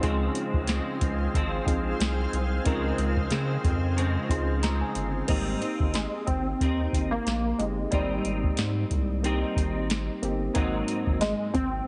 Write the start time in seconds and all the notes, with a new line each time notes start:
0.01 C#2 C#3 F3 G#3 C4 D#4 F4 G#4 C5 F5, kick, closed hi-hat
0.35 closed hi-hat
0.53 C#2, kick
0.67 C#3 F3 G#3 C4, snare, closed hi-hat
1.01 C#2, kick, closed hi-hat
1.34 G#1 F3 G#3 C4, kick, closed hi-hat
1.65 A#1 C4 D#4 F4 G#4, kick, closed hi-hat
2.00 C2, snare, closed hi-hat
2.33 C2, closed hi-hat
2.65 C#2 C#3 F3 G#3 C4 D#4 F4 A#4, kick, closed hi-hat
2.98 C#2, closed hi-hat
3.17 kick
3.30 C#3 F3 G#3 C4, snare, closed hi-hat
3.64 F2, kick, closed hi-hat
3.96 C#3 F3 G#3 C4, closed hi-hat
4.29 C#2 C4 D#4 F4 G#4 C6, kick, closed hi-hat
4.61 C#3 F3 G#3 C4 A#5, snare, closed hi-hat
4.81 G#5
4.95 G1, closed hi-hat
5.28 G#1 G#2 G3 A#3 C4 D#4 G4, kick, closed hi-hat, crash
5.61 C4 D#4, closed hi-hat
5.80 G#1, kick
5.94 G#3, snare, closed hi-hat
6.27 G#1 C4, kick, closed hi-hat
6.60 D#2 A#3 C4 D#4 G4, kick, closed hi-hat
6.93 G#1, kick, closed hi-hat
7.11 A#3
7.26 A#1, snare, closed hi-hat
7.58 G1 G#3 A#3 C4 D#4 G4, closed hi-hat
7.90 G#1 G#2 G3 A#3 C4 D#4, kick, closed hi-hat
7.95 G4
8.25 G#1, closed hi-hat
8.43 kick
8.57 G#2, snare, closed hi-hat
8.91 C2, kick, closed hi-hat
9.23 G3 A#3 C4 D#4 G4, closed hi-hat
9.56 G#1, kick, closed hi-hat
9.90 snare, closed hi-hat
10.22 G1 A#3 C4 D#4 G4, closed hi-hat
10.54 G#1 G#2 F#3 A#3 C4 D#4 F#4, kick, closed hi-hat
10.88 closed hi-hat
11.07 G#1, kick
11.21 G#3, snare, closed hi-hat
11.54 G#1 C4, kick, closed hi-hat